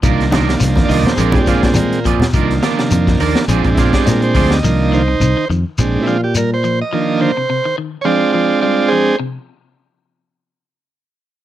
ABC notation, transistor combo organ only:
X:1
M:4/4
L:1/16
Q:"Swing 16ths" 1/4=105
K:Cm
V:1 name="Transistor combo organ"
z6 [de] c B G F D B,2 z2 | z8 z2 [=EF] G B c2 _e- | e2 [Ec]4 z4 [=EF] G B c2 _e- | e2 c4 z2 [F_d=d]2 [Fd]2 [Fd]2 [Ac]2 |
z16 |]
V:2 name="Transistor combo organ"
[E,F,B,D]8 [A,CD]6 z2 | [E,F,B,D]8 [A,CD]8 | [E,F,B,D]2 z6 [A,CD]2 z6 | [E,F,B,D]2 z6 [A,CD]8 |
z16 |]